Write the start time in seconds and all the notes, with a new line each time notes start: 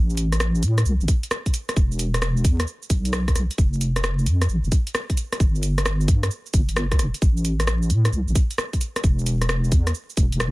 Already playing: A1
0.10 shaker
0.17 closed hi-hat, shaker
0.32 cross-stick, closed hi-hat, shaker
0.40 cross-stick, shaker
0.55 shaker
0.63 A2, closed hi-hat, shaker
0.78 cross-stick, closed hi-hat, shaker
0.85 C2, shaker
1.01 A1, shaker
1.08 kick, closed hi-hat, shaker
1.23 closed hi-hat, shaker
1.31 cross-stick, shaker
1.46 kick, closed hi-hat, shaker
1.54 closed hi-hat, shaker
1.69 cross-stick, closed hi-hat, shaker
1.76 E1, kick, shaker
1.92 shaker
1.99 closed hi-hat, shaker
2.14 cross-stick, closed hi-hat, shaker
2.22 cross-stick, shaker
2.37 shaker
2.45 E2, kick, closed hi-hat, shaker
2.60 cross-stick, closed hi-hat, shaker
2.67 shaker
2.82 shaker
2.90 B1, kick, closed hi-hat, shaker
3.05 closed hi-hat, shaker
3.13 cross-stick, shaker
3.28 kick, cross-stick, closed hi-hat, shaker
3.35 B1, cross-stick, closed hi-hat, shaker
3.51 closed hi-hat, shaker
3.58 F1, kick, shaker
3.73 shaker
3.81 closed hi-hat, shaker
3.96 cross-stick, closed hi-hat, shaker
4.04 cross-stick, shaker
4.19 shaker
4.26 F2, closed hi-hat, shaker
4.42 cross-stick, closed hi-hat, shaker
4.49 A1, shaker
4.64 F1, shaker
4.72 kick, closed hi-hat, shaker
4.87 closed hi-hat, shaker
4.95 cross-stick, shaker
5.10 kick, closed hi-hat, shaker
5.17 closed hi-hat, shaker
5.32 cross-stick, closed hi-hat, shaker
5.40 G1, kick, shaker
5.55 shaker
5.63 closed hi-hat, shaker
5.78 cross-stick, closed hi-hat, shaker
5.86 cross-stick, shaker
6.01 shaker
6.08 G2, kick, closed hi-hat, shaker
6.23 cross-stick, closed hi-hat, shaker
6.31 shaker
6.46 shaker
6.54 G1, kick, closed hi-hat, shaker
6.69 G1, closed hi-hat, shaker
6.76 cross-stick, shaker
6.91 D2, kick, cross-stick, closed hi-hat, shaker
6.99 F1, cross-stick, closed hi-hat, shaker
7.14 closed hi-hat, shaker
7.22 A1, kick, shaker
7.37 shaker
7.45 closed hi-hat, shaker
7.60 cross-stick, closed hi-hat, shaker
7.67 cross-stick, shaker
7.82 shaker
7.90 A2, closed hi-hat, shaker
8.05 cross-stick, closed hi-hat, shaker
8.13 C2, shaker
8.28 A1, shaker
8.35 kick, closed hi-hat, shaker
8.51 closed hi-hat, shaker
8.58 cross-stick, shaker
8.73 kick, closed hi-hat, shaker
8.81 closed hi-hat, shaker
8.96 cross-stick, closed hi-hat, shaker
9.04 E1, kick, shaker
9.19 shaker
9.26 closed hi-hat, shaker
9.41 cross-stick, closed hi-hat, shaker
9.49 cross-stick, shaker
9.64 shaker
9.72 E2, kick, closed hi-hat, shaker
9.87 cross-stick, closed hi-hat, shaker
9.95 shaker
10.10 shaker
10.17 E1, kick, closed hi-hat, shaker
10.32 E1, closed hi-hat, shaker
10.40 cross-stick, shaker